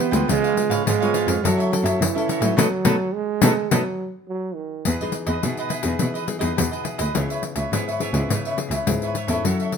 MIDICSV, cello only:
0, 0, Header, 1, 2, 480
1, 0, Start_track
1, 0, Key_signature, 4, "major"
1, 0, Tempo, 571973
1, 246, Time_signature, 4, 2, 24, 8
1, 8204, End_track
2, 0, Start_track
2, 0, Title_t, "Cello"
2, 0, Program_c, 0, 42
2, 105, Note_on_c, 0, 38, 85
2, 172, Note_off_c, 0, 38, 0
2, 247, Note_on_c, 0, 37, 86
2, 314, Note_off_c, 0, 37, 0
2, 587, Note_on_c, 0, 44, 79
2, 654, Note_off_c, 0, 44, 0
2, 723, Note_on_c, 0, 44, 94
2, 790, Note_off_c, 0, 44, 0
2, 1066, Note_on_c, 0, 41, 86
2, 1134, Note_off_c, 0, 41, 0
2, 1206, Note_on_c, 0, 42, 88
2, 1273, Note_off_c, 0, 42, 0
2, 1540, Note_on_c, 0, 42, 76
2, 1608, Note_off_c, 0, 42, 0
2, 1678, Note_on_c, 0, 42, 82
2, 1745, Note_off_c, 0, 42, 0
2, 2019, Note_on_c, 0, 45, 89
2, 2086, Note_off_c, 0, 45, 0
2, 2155, Note_on_c, 0, 47, 91
2, 2195, Note_off_c, 0, 47, 0
2, 2396, Note_on_c, 0, 47, 85
2, 2435, Note_off_c, 0, 47, 0
2, 2873, Note_on_c, 0, 47, 106
2, 2913, Note_off_c, 0, 47, 0
2, 3121, Note_on_c, 0, 47, 84
2, 3159, Note_off_c, 0, 47, 0
2, 4084, Note_on_c, 0, 40, 92
2, 4151, Note_off_c, 0, 40, 0
2, 4426, Note_on_c, 0, 40, 88
2, 4493, Note_off_c, 0, 40, 0
2, 4569, Note_on_c, 0, 47, 81
2, 4636, Note_off_c, 0, 47, 0
2, 4908, Note_on_c, 0, 40, 90
2, 4975, Note_off_c, 0, 40, 0
2, 5048, Note_on_c, 0, 47, 74
2, 5115, Note_off_c, 0, 47, 0
2, 5390, Note_on_c, 0, 40, 86
2, 5458, Note_off_c, 0, 40, 0
2, 5534, Note_on_c, 0, 40, 88
2, 5601, Note_off_c, 0, 40, 0
2, 5874, Note_on_c, 0, 38, 76
2, 5941, Note_off_c, 0, 38, 0
2, 6007, Note_on_c, 0, 37, 91
2, 6074, Note_off_c, 0, 37, 0
2, 6346, Note_on_c, 0, 37, 83
2, 6414, Note_off_c, 0, 37, 0
2, 6477, Note_on_c, 0, 44, 79
2, 6544, Note_off_c, 0, 44, 0
2, 6827, Note_on_c, 0, 37, 100
2, 6894, Note_off_c, 0, 37, 0
2, 6964, Note_on_c, 0, 44, 85
2, 7031, Note_off_c, 0, 44, 0
2, 7298, Note_on_c, 0, 37, 81
2, 7366, Note_off_c, 0, 37, 0
2, 7444, Note_on_c, 0, 37, 90
2, 7511, Note_off_c, 0, 37, 0
2, 7788, Note_on_c, 0, 40, 82
2, 7856, Note_off_c, 0, 40, 0
2, 7924, Note_on_c, 0, 42, 96
2, 7991, Note_off_c, 0, 42, 0
2, 8204, End_track
0, 0, End_of_file